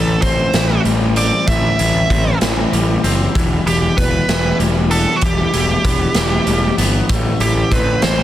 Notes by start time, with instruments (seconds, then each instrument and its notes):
Already playing: picked electric bass A1, clean electric guitar A2 E3, lead electric guitar A4
0.22 picked electric bass A1, clean electric guitar C4, lead electric guitar C5, kick, closed hi-hat
0.53 picked electric bass A1, clean electric guitar E3, snare, closed hi-hat
0.85 picked electric bass A1, clean electric guitar G3, closed hi-hat
1.16 clean electric guitar C4, lead electric guitar D5, closed hi-hat
1.47 picked electric bass A1, clean electric guitar A2, lead electric guitar E5, kick, closed hi-hat
1.79 picked electric bass A1, clean electric guitar E3, closed hi-hat
2.10 picked electric bass A1, clean electric guitar C4, kick, closed hi-hat
2.41 picked electric bass A1, clean electric guitar E3, snare, closed hi-hat
2.73 picked electric bass A1, clean electric guitar G3, closed hi-hat
3.04 picked electric bass F#1, clean electric guitar C4, closed hi-hat
3.35 picked electric bass E1, clean electric guitar E3, kick, closed hi-hat
3.66 picked electric bass E1, clean electric guitar E3, lead electric guitar G4, closed hi-hat
3.97 picked electric bass E1, clean electric guitar B3, lead electric guitar B4, kick, closed hi-hat
4.28 picked electric bass E1, clean electric guitar E3, snare, closed hi-hat
4.59 picked electric bass E1, clean electric guitar G3, closed hi-hat
4.91 clean electric guitar B3, lead electric guitar A4, closed hi-hat
5.16 lead electric guitar F#4
5.21 picked electric bass E1, clean electric guitar E3, lead electric guitar G4, kick, closed hi-hat
5.53 picked electric bass E1, clean electric guitar E3, closed hi-hat
5.84 picked electric bass E1, clean electric guitar B3, kick, closed hi-hat
6.14 picked electric bass E1, clean electric guitar E3, snare, closed hi-hat
6.47 picked electric bass E1, clean electric guitar G3, closed hi-hat
6.78 picked electric bass G1, clean electric guitar B3, closed hi-hat
7.09 picked electric bass A1, clean electric guitar A2, kick, closed hi-hat
7.40 picked electric bass A1, clean electric guitar E3, lead electric guitar G4, closed hi-hat
7.71 picked electric bass A1, clean electric guitar C4, lead electric guitar B4, kick, closed hi-hat
8.02 picked electric bass A1, clean electric guitar E3, lead electric guitar C5, snare, closed hi-hat